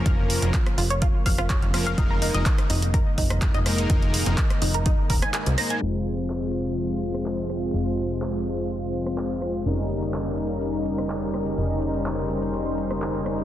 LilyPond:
<<
  \new Staff \with { instrumentName = "Synth arpeggio sound" } { \time 4/4 \key f \minor \tempo 4 = 125 r4. f'16 des''16 f'16 r16 f''16 f'16 des''16 r16 f'16 f''16 | ees'16 bes'16 ees'16 ees''16 r8 ees'16 r16 bes'16 r16 ees'16 r8 ees''16 r8 | r4. ees'16 bes'16 ees'16 r16 bes'16 aes''16 aes''16 r16 bes''16 aes''16 | r1 |
r1 | r1 | r1 | }
  \new Staff \with { instrumentName = "Supersaw synth" } { \time 4/4 \key f \minor <f bes des' bes'>8. <f bes des' bes'>16 r2 r8 <f bes des' bes'>8 | <aes bes ees' bes'>8. <aes bes ees' bes'>16 r2 r8 <aes bes ees' bes'>8 | <aes ees'>8. <aes bes ees' bes'>16 r2 r8 <aes bes ees' c''>8 | <aes c' f' c''>1~ |
<aes c' f' c''>1 | <g des' ees' bes'>1~ | <g des' ees' bes'>1 | }
  \new Staff \with { instrumentName = "Analog synth pad" } { \clef bass \time 4/4 \key f \minor << { <des f f'>1 | <aes, ees ees'>1~ | <aes, ees ees'>1 | <c f f'>1~ |
<c f f'>1 | <des g ees'>1~ | <des g ees'>1 | } \\ { bes1~ | bes1~ | bes1 | aes1~ |
aes1 | bes1 | c''1 | } >> }
  \new Staff \with { instrumentName = "Analog synth bass" } { \clef bass \time 4/4 \key f \minor f,,8. f,,16 r8 f,,8. r16 f,,8. f,,8. | f,,8. f,,16 r8 f,,8. r16 f,,8. f,,8. | f,,8. f,,16 r8 f,,8. r16 ees,,16 r8 c,16 r8 | f,,1 |
f,,1 | f,,1 | f,,1 | }
  \new DrumStaff \with { instrumentName = "Drums" } \drummode { \time 4/4 <hh bd>8 hho16 hh16 <hc hh bd>16 <hh ss>16 hho16 hh16 <hh bd>8 <hho bd>16 <hh ss>16 <hc hh bd>16 hh16 <hho ss>16 hh16 | <hh bd>8 hho16 hh16 <hc hh bd>16 <hh ss>16 hho16 hh16 <hh bd>8 <hho bd>16 <hh ss>16 <hc hh bd>16 hh16 <hho ss>16 hh16 | <hh bd>16 hh16 hho16 hh16 <hc hh bd>16 <hh ss>16 hho16 hh16 <hh bd>8 <hho bd>16 <hh ss>16 <hc hh>16 hh16 <hho ss>16 hh16 | <cymc hh>8 hh16 hh16 <hc hh>16 hh16 hh16 hh16 hh8 hh16 <hh ss>16 <hc hh>16 hh16 <hh ss>16 hh16 |
hh8 hh16 hh16 <hc hh>16 hh16 hh16 hh16 hh8 hh16 <hh ss>16 <hc hh>16 hh16 <hh ss>16 hh16 | hh8 hh16 hh16 <hc hh>16 hh16 hh16 hh16 hh8 hh16 <hh ss>16 <hc hh>16 hh16 <hh ss>16 hh16 | hh8 hh16 hh16 <hc hh>16 hh16 hh16 hh16 hh8 hh16 <hh ss>16 <hc hh>16 hh16 <hh ss>16 hh16 | }
>>